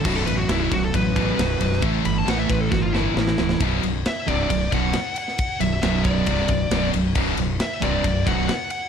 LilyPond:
<<
  \new Staff \with { instrumentName = "Lead electric guitar" } { \time 4/4 \key b \minor \tempo 4 = 135 fis'16 a'16 b'16 fis'16 e'16 e'16 fis'16 a'16 b'2 | r8 b''16 a''16 fis''16 e''16 b'16 a'16 fis'16 eis'16 e'8 e'4 | r4 e''8 d''4 fis''4 fis''8~ | fis''8 e''8 e''8 d''2 r8 |
r4 e''8 d''4 fis''8 fis''8 fis''8 | }
  \new Staff \with { instrumentName = "Distorted electric guitar" } { \clef bass \time 4/4 \key b \minor <b,, fis, b,>8 <b,, fis,>8 <b,, fis, b,>8 <b,, fis,>8 <b,, fis,>8 <b,, fis, b,>8 <b,, fis,>8 <b,, fis,>8 | <a, e a>8 <a, e>8 <a, e a>8 <a, e>8 <a, e>8 <a, e a>8 <a, e>8 <a, e>8 | <b,, fis, b,>8 <b,, fis,>8 r8 <c, g, c>8 <b,, fis,>8 <b,, fis, b,>8 r4 | r8 <b,, fis,>8 <b,, fis, b,>4 <c, g, c>8 <b,, fis,>8 <b,, fis, b,>8 <b,, fis,>8 |
<b,, fis, b,>8 <b,, fis,>8 r8 <c, g, c>8 <b,, fis,>8 <b,, fis, b,>8 r4 | }
  \new Staff \with { instrumentName = "Distorted electric guitar" } { \clef bass \time 4/4 \key b \minor <b,, fis, b,>8 <b,, fis,>8 <b,, fis, b,>8 <b,, fis,>8 <b,, fis,>8 <b,, fis, b,>8 <b,, fis,>8 <b,, fis,>8 | <a, e a>8 <a, e>8 <a, e a>8 <a, e>8 <a, e>8 <a, e a>8 <a, e>8 <a, e>8 | <b,, fis, b,>8 <b,, fis,>8 r8 <c, g, c>8 <b,, fis,>8 <b,, fis, b,>8 r4 | r8 <b,, fis,>8 <b,, fis, b,>4 <c, g, c>8 <b,, fis,>8 <b,, fis, b,>8 <b,, fis,>8 |
<b,, fis, b,>8 <b,, fis,>8 r8 <c, g, c>8 <b,, fis,>8 <b,, fis, b,>8 r4 | }
  \new Staff \with { instrumentName = "Distorted electric guitar" } { \clef bass \time 4/4 \key b \minor <b,, fis, b,>2~ <b,, fis, b,>8 <b,, fis, b,>8 <b,, fis, b,>4 | <a, e a>2~ <a, e a>8 <a, e a>8 <a, e a>4 | <b,, fis, b,>8 <b,, fis,>8 r8 <c, g, c>8 <b,, fis,>8 <b,, fis, b,>8 r4 | r8 <b,, fis,>8 <b,, fis, b,>4 <c, g, c>8 <b,, fis,>8 <b,, fis, b,>8 <b,, fis,>8 |
<b,, fis, b,>8 <b,, fis,>8 r8 <c, g, c>8 <b,, fis,>8 <b,, fis, b,>8 r4 | }
  \new Staff \with { instrumentName = "Fingered electric bass" } { \clef bass \time 4/4 \key b \minor b,,,8 a,,8 b,,,8 b,,,8 a,,4 b,,,8 b,,,8 | a,,8 g,,8 a,,8 a,,8 g,,4 a,,8 cis,,8 | b,,,8 b,,,8 r8 c,,8 b,,,8 b,,,8 r4 | r8 b,,,8 b,,,4 c,,8 b,,,8 b,,,8 b,,,8 |
b,,,8 b,,,8 r8 c,,8 b,,,8 b,,,8 r4 | }
  \new DrumStaff \with { instrumentName = "Drums" } \drummode { \time 4/4 <cymc bd>8 cymr8 <cymr sn>8 <bd cymr>8 <bd cymr>8 <bd cymr>8 <cymr sn>8 cymr16 sn16 | <bd cymr>8 cymr8 <cymr sn>8 <bd cymr sn>8 <bd sn>8 sn8 sn16 sn16 sn16 sn16 | <bd cymr>8 cymr8 <cymr sn>8 <bd cymr>8 <bd cymr>8 <bd cymr>8 <cymr sn>8 cymr16 sn16 | <bd cymr>8 cymr8 <cymr sn>8 <bd cymr sn>8 <bd cymr>8 <bd cymr>8 <cymr sn>8 cymr8 |
<cymc bd>8 cymr8 <cymr sn>8 <bd cymr sn>8 <bd cymr>8 <bd cymr>8 <cymr sn>8 cymr8 | }
>>